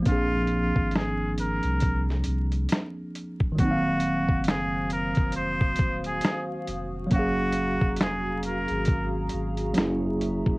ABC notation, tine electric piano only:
X:1
M:4/4
L:1/8
Q:"Swing 16ths" 1/4=68
K:Ebdor
V:1 name="Tine electric piano"
[F,B,C=DA]8 | [E,G,B,CEf]8 | [G,B,DAf]6 [G,B,D_FA]2 |]